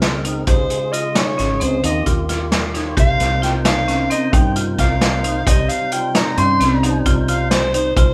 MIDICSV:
0, 0, Header, 1, 6, 480
1, 0, Start_track
1, 0, Tempo, 453858
1, 503, Time_signature, 11, 3, 24, 8
1, 8607, End_track
2, 0, Start_track
2, 0, Title_t, "Soprano saxophone"
2, 0, Program_c, 0, 64
2, 501, Note_on_c, 0, 72, 87
2, 974, Note_on_c, 0, 75, 77
2, 989, Note_off_c, 0, 72, 0
2, 1231, Note_on_c, 0, 73, 88
2, 1247, Note_off_c, 0, 75, 0
2, 1714, Note_on_c, 0, 72, 84
2, 1730, Note_off_c, 0, 73, 0
2, 1949, Note_off_c, 0, 72, 0
2, 1958, Note_on_c, 0, 75, 83
2, 2175, Note_off_c, 0, 75, 0
2, 3166, Note_on_c, 0, 77, 102
2, 3603, Note_off_c, 0, 77, 0
2, 3632, Note_on_c, 0, 79, 81
2, 3738, Note_off_c, 0, 79, 0
2, 3868, Note_on_c, 0, 77, 92
2, 4313, Note_off_c, 0, 77, 0
2, 4348, Note_on_c, 0, 75, 77
2, 4576, Note_on_c, 0, 79, 82
2, 4592, Note_off_c, 0, 75, 0
2, 4821, Note_off_c, 0, 79, 0
2, 5079, Note_on_c, 0, 77, 81
2, 5781, Note_on_c, 0, 75, 88
2, 5797, Note_off_c, 0, 77, 0
2, 6013, Note_on_c, 0, 77, 92
2, 6029, Note_off_c, 0, 75, 0
2, 6268, Note_on_c, 0, 79, 80
2, 6284, Note_off_c, 0, 77, 0
2, 6506, Note_off_c, 0, 79, 0
2, 6518, Note_on_c, 0, 82, 88
2, 6735, Note_off_c, 0, 82, 0
2, 6751, Note_on_c, 0, 84, 105
2, 7425, Note_off_c, 0, 84, 0
2, 7705, Note_on_c, 0, 77, 82
2, 7927, Note_off_c, 0, 77, 0
2, 7937, Note_on_c, 0, 72, 92
2, 8163, Note_off_c, 0, 72, 0
2, 8188, Note_on_c, 0, 72, 89
2, 8409, Note_off_c, 0, 72, 0
2, 8416, Note_on_c, 0, 72, 89
2, 8607, Note_off_c, 0, 72, 0
2, 8607, End_track
3, 0, Start_track
3, 0, Title_t, "Marimba"
3, 0, Program_c, 1, 12
3, 0, Note_on_c, 1, 65, 64
3, 117, Note_off_c, 1, 65, 0
3, 262, Note_on_c, 1, 63, 66
3, 430, Note_off_c, 1, 63, 0
3, 500, Note_on_c, 1, 67, 74
3, 837, Note_off_c, 1, 67, 0
3, 980, Note_on_c, 1, 65, 68
3, 1149, Note_off_c, 1, 65, 0
3, 1223, Note_on_c, 1, 63, 74
3, 1391, Note_off_c, 1, 63, 0
3, 1459, Note_on_c, 1, 61, 69
3, 1628, Note_off_c, 1, 61, 0
3, 1694, Note_on_c, 1, 60, 68
3, 1865, Note_off_c, 1, 60, 0
3, 1941, Note_on_c, 1, 63, 72
3, 2110, Note_off_c, 1, 63, 0
3, 2180, Note_on_c, 1, 65, 69
3, 2349, Note_off_c, 1, 65, 0
3, 2423, Note_on_c, 1, 65, 65
3, 2759, Note_off_c, 1, 65, 0
3, 2902, Note_on_c, 1, 63, 74
3, 3070, Note_off_c, 1, 63, 0
3, 3139, Note_on_c, 1, 67, 76
3, 3477, Note_off_c, 1, 67, 0
3, 3619, Note_on_c, 1, 65, 74
3, 3789, Note_off_c, 1, 65, 0
3, 3860, Note_on_c, 1, 63, 79
3, 4029, Note_off_c, 1, 63, 0
3, 4101, Note_on_c, 1, 61, 72
3, 4270, Note_off_c, 1, 61, 0
3, 4338, Note_on_c, 1, 60, 73
3, 4508, Note_off_c, 1, 60, 0
3, 4581, Note_on_c, 1, 63, 82
3, 4750, Note_off_c, 1, 63, 0
3, 4824, Note_on_c, 1, 65, 74
3, 4992, Note_off_c, 1, 65, 0
3, 5070, Note_on_c, 1, 65, 65
3, 5403, Note_off_c, 1, 65, 0
3, 5548, Note_on_c, 1, 63, 77
3, 5714, Note_off_c, 1, 63, 0
3, 5783, Note_on_c, 1, 67, 81
3, 6119, Note_off_c, 1, 67, 0
3, 6267, Note_on_c, 1, 65, 68
3, 6434, Note_off_c, 1, 65, 0
3, 6503, Note_on_c, 1, 63, 80
3, 6671, Note_off_c, 1, 63, 0
3, 6749, Note_on_c, 1, 61, 80
3, 6915, Note_off_c, 1, 61, 0
3, 6983, Note_on_c, 1, 60, 74
3, 7151, Note_off_c, 1, 60, 0
3, 7226, Note_on_c, 1, 63, 88
3, 7393, Note_off_c, 1, 63, 0
3, 7466, Note_on_c, 1, 65, 84
3, 7633, Note_off_c, 1, 65, 0
3, 7706, Note_on_c, 1, 65, 74
3, 8040, Note_off_c, 1, 65, 0
3, 8191, Note_on_c, 1, 63, 77
3, 8356, Note_off_c, 1, 63, 0
3, 8431, Note_on_c, 1, 65, 79
3, 8596, Note_off_c, 1, 65, 0
3, 8607, End_track
4, 0, Start_track
4, 0, Title_t, "Tonewheel organ"
4, 0, Program_c, 2, 16
4, 0, Note_on_c, 2, 49, 56
4, 0, Note_on_c, 2, 56, 57
4, 0, Note_on_c, 2, 60, 54
4, 0, Note_on_c, 2, 70, 68
4, 473, Note_off_c, 2, 49, 0
4, 476, Note_off_c, 2, 56, 0
4, 477, Note_off_c, 2, 60, 0
4, 482, Note_off_c, 2, 70, 0
4, 497, Note_on_c, 2, 49, 63
4, 507, Note_on_c, 2, 56, 57
4, 512, Note_on_c, 2, 65, 57
4, 520, Note_on_c, 2, 68, 69
4, 1912, Note_off_c, 2, 49, 0
4, 1917, Note_off_c, 2, 56, 0
4, 1920, Note_off_c, 2, 65, 0
4, 1924, Note_off_c, 2, 68, 0
4, 1943, Note_on_c, 2, 51, 62
4, 1946, Note_on_c, 2, 58, 57
4, 1953, Note_on_c, 2, 65, 55
4, 1957, Note_on_c, 2, 67, 68
4, 2663, Note_on_c, 2, 77, 66
4, 2887, Note_off_c, 2, 77, 0
4, 2910, Note_on_c, 2, 73, 64
4, 3120, Note_off_c, 2, 51, 0
4, 3122, Note_off_c, 2, 58, 0
4, 3125, Note_off_c, 2, 65, 0
4, 3127, Note_off_c, 2, 67, 0
4, 3131, Note_off_c, 2, 73, 0
4, 3133, Note_on_c, 2, 48, 61
4, 3139, Note_on_c, 2, 58, 55
4, 3145, Note_on_c, 2, 63, 58
4, 3147, Note_on_c, 2, 72, 71
4, 5736, Note_off_c, 2, 48, 0
4, 5739, Note_off_c, 2, 58, 0
4, 5742, Note_off_c, 2, 63, 0
4, 5744, Note_off_c, 2, 72, 0
4, 5768, Note_on_c, 2, 48, 65
4, 5774, Note_on_c, 2, 55, 57
4, 5782, Note_on_c, 2, 63, 59
4, 5786, Note_on_c, 2, 72, 74
4, 8373, Note_off_c, 2, 48, 0
4, 8375, Note_off_c, 2, 55, 0
4, 8379, Note_off_c, 2, 63, 0
4, 8381, Note_off_c, 2, 72, 0
4, 8607, End_track
5, 0, Start_track
5, 0, Title_t, "Fretless electric bass"
5, 0, Program_c, 3, 35
5, 0, Note_on_c, 3, 37, 74
5, 462, Note_off_c, 3, 37, 0
5, 503, Note_on_c, 3, 37, 77
5, 723, Note_off_c, 3, 37, 0
5, 1476, Note_on_c, 3, 32, 80
5, 1690, Note_off_c, 3, 32, 0
5, 1708, Note_on_c, 3, 37, 87
5, 1926, Note_off_c, 3, 37, 0
5, 1945, Note_on_c, 3, 39, 89
5, 2165, Note_off_c, 3, 39, 0
5, 2184, Note_on_c, 3, 39, 78
5, 3102, Note_off_c, 3, 39, 0
5, 3145, Note_on_c, 3, 36, 81
5, 3365, Note_off_c, 3, 36, 0
5, 3384, Note_on_c, 3, 36, 87
5, 4302, Note_off_c, 3, 36, 0
5, 4582, Note_on_c, 3, 43, 89
5, 5023, Note_off_c, 3, 43, 0
5, 5064, Note_on_c, 3, 36, 91
5, 5742, Note_off_c, 3, 36, 0
5, 5784, Note_on_c, 3, 36, 82
5, 6004, Note_off_c, 3, 36, 0
5, 6744, Note_on_c, 3, 43, 96
5, 6964, Note_off_c, 3, 43, 0
5, 6986, Note_on_c, 3, 36, 91
5, 7425, Note_off_c, 3, 36, 0
5, 7463, Note_on_c, 3, 36, 98
5, 8380, Note_off_c, 3, 36, 0
5, 8424, Note_on_c, 3, 36, 78
5, 8607, Note_off_c, 3, 36, 0
5, 8607, End_track
6, 0, Start_track
6, 0, Title_t, "Drums"
6, 17, Note_on_c, 9, 38, 96
6, 17, Note_on_c, 9, 42, 73
6, 123, Note_off_c, 9, 38, 0
6, 123, Note_off_c, 9, 42, 0
6, 260, Note_on_c, 9, 42, 60
6, 366, Note_off_c, 9, 42, 0
6, 495, Note_on_c, 9, 42, 74
6, 500, Note_on_c, 9, 36, 91
6, 600, Note_off_c, 9, 42, 0
6, 606, Note_off_c, 9, 36, 0
6, 740, Note_on_c, 9, 42, 62
6, 846, Note_off_c, 9, 42, 0
6, 986, Note_on_c, 9, 42, 58
6, 1092, Note_off_c, 9, 42, 0
6, 1219, Note_on_c, 9, 38, 109
6, 1219, Note_on_c, 9, 42, 81
6, 1325, Note_off_c, 9, 38, 0
6, 1325, Note_off_c, 9, 42, 0
6, 1466, Note_on_c, 9, 38, 31
6, 1466, Note_on_c, 9, 42, 57
6, 1571, Note_off_c, 9, 38, 0
6, 1571, Note_off_c, 9, 42, 0
6, 1700, Note_on_c, 9, 42, 61
6, 1806, Note_off_c, 9, 42, 0
6, 1940, Note_on_c, 9, 42, 72
6, 2046, Note_off_c, 9, 42, 0
6, 2180, Note_on_c, 9, 42, 55
6, 2183, Note_on_c, 9, 36, 61
6, 2285, Note_off_c, 9, 42, 0
6, 2289, Note_off_c, 9, 36, 0
6, 2421, Note_on_c, 9, 38, 30
6, 2421, Note_on_c, 9, 42, 56
6, 2527, Note_off_c, 9, 38, 0
6, 2527, Note_off_c, 9, 42, 0
6, 2662, Note_on_c, 9, 38, 101
6, 2662, Note_on_c, 9, 42, 71
6, 2767, Note_off_c, 9, 38, 0
6, 2767, Note_off_c, 9, 42, 0
6, 2904, Note_on_c, 9, 38, 30
6, 2904, Note_on_c, 9, 42, 55
6, 3009, Note_off_c, 9, 38, 0
6, 3009, Note_off_c, 9, 42, 0
6, 3143, Note_on_c, 9, 36, 95
6, 3143, Note_on_c, 9, 42, 70
6, 3248, Note_off_c, 9, 42, 0
6, 3249, Note_off_c, 9, 36, 0
6, 3381, Note_on_c, 9, 38, 32
6, 3381, Note_on_c, 9, 42, 55
6, 3487, Note_off_c, 9, 38, 0
6, 3487, Note_off_c, 9, 42, 0
6, 3626, Note_on_c, 9, 38, 32
6, 3626, Note_on_c, 9, 42, 57
6, 3732, Note_off_c, 9, 38, 0
6, 3732, Note_off_c, 9, 42, 0
6, 3859, Note_on_c, 9, 38, 107
6, 3859, Note_on_c, 9, 42, 83
6, 3964, Note_off_c, 9, 38, 0
6, 3964, Note_off_c, 9, 42, 0
6, 4105, Note_on_c, 9, 38, 29
6, 4105, Note_on_c, 9, 42, 52
6, 4211, Note_off_c, 9, 38, 0
6, 4211, Note_off_c, 9, 42, 0
6, 4341, Note_on_c, 9, 42, 57
6, 4447, Note_off_c, 9, 42, 0
6, 4580, Note_on_c, 9, 36, 100
6, 4581, Note_on_c, 9, 42, 71
6, 4685, Note_off_c, 9, 36, 0
6, 4687, Note_off_c, 9, 42, 0
6, 4819, Note_on_c, 9, 42, 62
6, 4924, Note_off_c, 9, 42, 0
6, 5059, Note_on_c, 9, 38, 34
6, 5059, Note_on_c, 9, 42, 62
6, 5060, Note_on_c, 9, 36, 66
6, 5165, Note_off_c, 9, 38, 0
6, 5165, Note_off_c, 9, 42, 0
6, 5166, Note_off_c, 9, 36, 0
6, 5301, Note_on_c, 9, 38, 107
6, 5301, Note_on_c, 9, 42, 76
6, 5406, Note_off_c, 9, 38, 0
6, 5406, Note_off_c, 9, 42, 0
6, 5542, Note_on_c, 9, 42, 57
6, 5647, Note_off_c, 9, 42, 0
6, 5781, Note_on_c, 9, 36, 97
6, 5782, Note_on_c, 9, 42, 84
6, 5887, Note_off_c, 9, 36, 0
6, 5888, Note_off_c, 9, 42, 0
6, 6020, Note_on_c, 9, 42, 59
6, 6126, Note_off_c, 9, 42, 0
6, 6257, Note_on_c, 9, 42, 63
6, 6363, Note_off_c, 9, 42, 0
6, 6500, Note_on_c, 9, 38, 107
6, 6500, Note_on_c, 9, 42, 86
6, 6606, Note_off_c, 9, 38, 0
6, 6606, Note_off_c, 9, 42, 0
6, 6741, Note_on_c, 9, 42, 57
6, 6846, Note_off_c, 9, 42, 0
6, 6985, Note_on_c, 9, 38, 36
6, 6985, Note_on_c, 9, 42, 59
6, 7090, Note_off_c, 9, 38, 0
6, 7090, Note_off_c, 9, 42, 0
6, 7227, Note_on_c, 9, 42, 70
6, 7332, Note_off_c, 9, 42, 0
6, 7462, Note_on_c, 9, 42, 58
6, 7463, Note_on_c, 9, 36, 63
6, 7568, Note_off_c, 9, 42, 0
6, 7569, Note_off_c, 9, 36, 0
6, 7701, Note_on_c, 9, 42, 52
6, 7806, Note_off_c, 9, 42, 0
6, 7941, Note_on_c, 9, 38, 103
6, 7941, Note_on_c, 9, 42, 77
6, 8047, Note_off_c, 9, 38, 0
6, 8047, Note_off_c, 9, 42, 0
6, 8185, Note_on_c, 9, 42, 58
6, 8291, Note_off_c, 9, 42, 0
6, 8424, Note_on_c, 9, 36, 102
6, 8425, Note_on_c, 9, 42, 73
6, 8530, Note_off_c, 9, 36, 0
6, 8531, Note_off_c, 9, 42, 0
6, 8607, End_track
0, 0, End_of_file